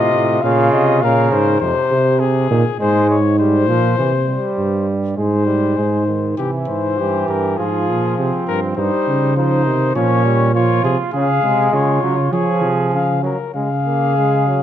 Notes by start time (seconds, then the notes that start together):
Already playing: A2 C3 F4 D#5
0.13 A2
0.42 A#2 C#3 F4 F5
0.72 C3 D#5
1.02 A#2 C#3 A#4 F5
1.31 G#2 C5
1.61 F2 C3 C5
1.91 C3
2.20 C3 G#4
2.50 A#2 D#3
2.80 G#2 G#3 C5
3.10 C#5
3.39 G3 C5
3.68 A#2 F3
3.98 C3 E3
4.27 G3
4.58 G2
5.17 G#2 G#3 C5
5.46 G3
5.76 G#2 G#3
6.06 D#3
6.37 C3 E3 E4 G4
6.68 G#2 C5
6.97 G2 E3 G4
7.28 G2 A#4
7.58 G#2 F3 F4 G#4
7.89 A#2
8.17 C3 C4
8.47 G2 A#4
8.77 G2 G3 D#4 C5
9.08 C#3
9.36 F3 D#4 C5
9.65 C3 D#3
9.95 A#2 F3 C#4 C#5
10.25 G3
10.55 F3 F4 C#5
10.84 C3 G#4
11.12 C#3 G#4 F5
11.42 C3 G#3
11.73 C#3 F4 C#5
12.02 C#3 F#3
12.32 F3 G#4 C#5
12.63 C3
12.93 C#3 F5
13.23 F#3 A#4
13.55 C#3 G#3 G#4 F5
13.86 A#3
14.17 G#3
14.47 F#3